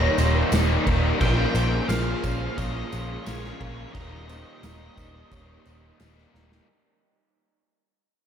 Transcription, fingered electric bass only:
0.18 0.42 D#1 medium
0.52 0.76 D#1 medium
0.87 1.10 D#1 medium
1.21 1.45 A#1 medium
1.54 1.78 A#1 medium
1.89 2.13 A#1 medium
2.23 2.47 A#1 medium
2.58 2.82 A#1 loud
2.93 3.16 A#1 medium
3.27 3.50 A#1 medium
3.61 3.84 A#1 loud
3.95 4.42 D#1 medium
4.63 4.87 D#1 medium
4.98 5.21 D#1 medium
5.31 5.55 D#1 loud
5.66 5.90 D#1 medium
6.00 6.24 D#1 medium
6.34 6.58 D#1 medium

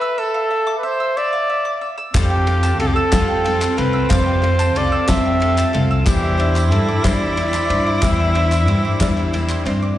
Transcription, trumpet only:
0.00 0.20 B4 medium
0.19 0.77 A4 medium
0.78 0.86 B4 medium
0.85 1.19 C5 loud
1.17 1.90 D5 loud
2.16 2.77 G4 medium
2.80 2.89 A4 medium
2.87 2.96 G4 medium
2.94 3.79 A4 loud
3.78 4.12 B4 medium
4.10 4.79 C5 loud
4.77 5.10 D5 medium
5.09 5.82 E5 medium
6.07 6.66 G4 loud
6.66 6.73 G4 medium
6.71 7.05 A4 medium
7.04 8.03 D5 medium
8.02 9.33 E5 medium

